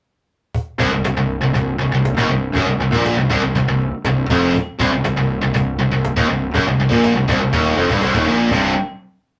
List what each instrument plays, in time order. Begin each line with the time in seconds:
0.55 cajon bass
0.80 fingered electric bass C1, distorted electric guitar C2, cajon bass
0.92 fingered electric bass C1, distorted electric guitar C2
1.04 fingered electric bass C1, distorted electric guitar C2, cajon slap
1.17 fingered electric bass C1, distorted electric guitar C2
1.30 cajon slap
1.42 fingered electric bass C1, distorted electric guitar C2
1.55 fingered electric bass C1, distorted electric guitar C2, cajon bass, cajon slap
1.80 fingered electric bass C1, distorted electric guitar C2, cajon slap
1.93 fingered electric bass C1, distorted electric guitar C2
2.05 cajon slap
2.18 fingered electric bass D#1, distorted electric guitar D#2, cajon bass
2.29 fingered electric bass C1, distorted electric guitar C2
2.55 fingered electric bass F#1, distorted electric guitar F#2, cajon bass
2.66 fingered electric bass C1, distorted electric guitar C2
2.78 fingered electric bass C1, distorted electric guitar C2, cajon slap
2.93 fingered electric bass A#1, distorted electric guitar A#2, cajon bass
3.06 cajon slap
3.17 fingered electric bass C1, distorted electric guitar C2
3.30 fingered electric bass C1, distorted electric guitar C2, cajon bass
3.42 fingered electric bass C1, distorted electric guitar C2
3.55 fingered electric bass C1, distorted electric guitar C2, cajon bass, cajon slap
3.67 fingered electric bass C1, distorted electric guitar C2
3.80 cajon slap
4.04 fingered electric bass C1, distorted electric guitar C2, cajon slap
4.30 fingered electric bass F1, distorted electric guitar F2, cajon bass
4.55 cajon bass
4.79 fingered electric bass C1, distorted electric guitar C2, cajon bass
4.93 fingered electric bass C1, distorted electric guitar C2
5.04 fingered electric bass C1, distorted electric guitar C2, cajon slap
5.17 fingered electric bass C1, distorted electric guitar C2
5.30 cajon slap
5.41 fingered electric bass C1, distorted electric guitar C2
5.54 fingered electric bass C1, distorted electric guitar C2, cajon bass, cajon slap
5.79 fingered electric bass C1, distorted electric guitar C2, cajon slap
5.91 fingered electric bass C1, distorted electric guitar C2
6.05 cajon slap
6.16 fingered electric bass D#1, distorted electric guitar D#2, cajon bass
6.29 fingered electric bass C1, distorted electric guitar C2
6.55 fingered electric bass F#1, distorted electric guitar F#2, cajon bass
6.65 fingered electric bass C1, distorted electric guitar C2
6.78 fingered electric bass C1, distorted electric guitar C2, cajon slap
6.90 fingered electric bass A#1, distorted electric guitar A#2, cajon bass
7.04 cajon slap
7.15 fingered electric bass C1, distorted electric guitar C2
7.28 fingered electric bass C1, distorted electric guitar C2, cajon bass
7.40 fingered electric bass C1, distorted electric guitar C2
7.53 fingered electric bass D#1, distorted electric guitar D#2, cajon bass
7.77 fingered electric bass F1, distorted electric guitar F2, cajon slap
7.90 fingered electric bass G1, distorted electric guitar G2, cajon bass
8.02 fingered electric bass C1, distorted electric guitar C2, cajon slap
8.14 fingered electric bass D#1, distorted electric guitar D#2, cajon bass
8.27 fingered electric bass A#1, distorted electric guitar A#2
8.51 fingered electric bass C1, distorted electric guitar C2 G2 C3, cajon bass